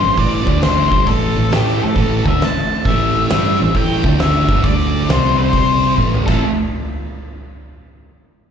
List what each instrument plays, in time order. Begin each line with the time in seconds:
Already playing: lead electric guitar C5
0.02 picked electric bass A1, distorted electric guitar A2 E3
0.17 picked electric bass A1, distorted electric guitar A2 E3 A3, lead electric guitar D5, kick, open hi-hat
0.47 picked electric bass D2, distorted electric guitar D3 A3 D4, kick
0.62 lead electric guitar C5, snare, open hi-hat
0.92 picked electric bass G1, distorted electric guitar G2 D3 G3, kick
1.06 picked electric bass A1, distorted electric guitar A2 E3 A3, lead electric guitar A4, kick, open hi-hat
1.36 picked electric bass A1, distorted electric guitar A2 E3
1.51 picked electric bass A2, distorted electric guitar A3 E4 A4, lead electric guitar G4, snare, open hi-hat
1.68 snare
1.82 lead electric guitar A4, muted distorted electric guitar stroke, muted picked electric bass stroke
1.96 picked electric bass A1, distorted electric guitar A2 E3 A3, kick, open hi-hat
2.26 picked electric bass D2, distorted electric guitar D3 A3 D4, lead electric guitar E5, kick
2.41 lead electric guitar A5, snare, open hi-hat
2.85 picked electric bass A1, distorted electric guitar A2 E3 A3, lead electric guitar E5, kick, open hi-hat
3.29 picked electric bass G2, distorted electric guitar G3 D4 G4, lead electric guitar E5, snare, open hi-hat
3.60 picked electric bass A1, distorted electric guitar A2 E3
3.74 picked electric bass A1, distorted electric guitar A2 E3 A3, lead electric guitar G5, kick, open hi-hat
4.04 picked electric bass D2, distorted electric guitar D3 A3 D4, kick
4.19 lead electric guitar E5, snare, open hi-hat
4.49 picked electric bass G1, distorted electric guitar G2 D3 G3, kick
4.64 picked electric bass D2, distorted electric guitar D3 A3 D4, lead electric guitar D5, kick, open hi-hat
5.09 picked electric bass C2, distorted electric guitar C3 G3 C4, lead electric guitar C5, snare, open hi-hat
5.38 lead electric guitar C5
5.53 kick, open hi-hat
5.98 picked electric bass A1, distorted electric guitar A2 E3 A3, kick
6.14 mid tom
6.26 picked electric bass A1, distorted electric guitar A2 E3 A3 C4 E4, lead electric guitar A4, kick, crash
6.30 distorted electric guitar A4